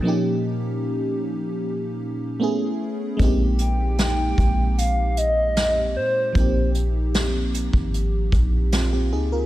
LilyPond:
<<
  \new Staff \with { instrumentName = "Soft synth lead" } { \time 4/4 \key aes \major \tempo 4 = 76 r1 | r8 g''4. f''8 ees''4 c''8~ | c''8 r2. r8 | }
  \new Staff \with { instrumentName = "FM electric piano" } { \time 4/4 \key aes \major << { r1 | r1 | r2. <c' f'>16 <c' g'>16 <ees' aes'>16 <f' bes'>16 | } \\ { <bes, f bes des' ees' g'>2. <a ces' cis' e' gis'>4 | <aes bes c' ees' g'>1 | <f bes c' ees' g'>1 | } >> }
  \new Staff \with { instrumentName = "808-style bass" } { \clef bass \time 4/4 \key aes \major r1 | bes,,4. bes,,2 bes,8 | bes,,4.~ bes,,16 aes,,8. bes,,4 des,8 | }
  \new DrumStaff \with { instrumentName = "Drums" } \drummode { \time 4/4 r4 r4 r4 r4 | <hh bd>8 hh8 <hh sn>8 <hh bd>8 hh8 hh8 <hh sn>4 | <hh bd>8 hh8 <hh sn>8 hh16 bd16 hh8 <hh bd>8 <hh sn>4 | }
>>